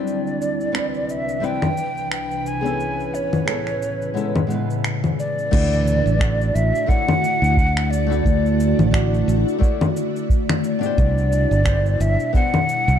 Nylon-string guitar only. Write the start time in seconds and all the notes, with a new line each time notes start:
Already playing: G3 C4 D4 E4 B4
0.72 G3 C4 D4 E4 B4
1.40 G3 C4 D4 E4 B4
2.61 B3 C#4 G#4
2.66 E4 A4
3.46 B3 C#4 E4 G#4 A4
4.14 G#3 B3 C#4 E4 A4
4.47 C#3 G#3 B3
4.52 E4 B4
5.51 A3 D4 E4 F#4 D5
6.19 A3 D4 E4 F#4 D5
6.86 A3 D4 E4 F#4 C#5
8.07 A3 D4 E4
8.11 F#4 D5
8.91 A3 D4 E4 F#4 D5
9.59 A3 D4 E4 F#4 C#5
10.79 B2 D4 E4
10.83 G4 C5
11.64 B2 D4 E4 G4 C5
12.33 B3 D4 E4 G4 C5